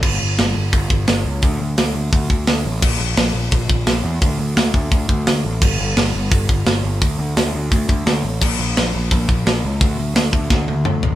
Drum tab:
CC |x-------|--------|x-------|--------|
HH |--o-o-o-|o-o-o-o-|--o-o-o-|o-o-o-o-|
SD |--o---o-|--o---o-|--o---o-|--o---o-|
T1 |--------|--------|--------|--------|
T2 |--------|--------|--------|--------|
FT |--------|--------|--------|--------|
BD |o---oo--|o---oo--|o---oo--|o--ooo--|

CC |x-------|--------|x-------|--------|
HH |--o-o-o-|o-o-o-o-|--o-o-o-|o-o-----|
SD |--o---o-|--o---o-|--o---o-|--o-o---|
T1 |--------|--------|--------|-----o--|
T2 |--------|--------|--------|------o-|
FT |--------|--------|--------|-------o|
BD |o---oo--|o---oo--|o---oo--|o--oo---|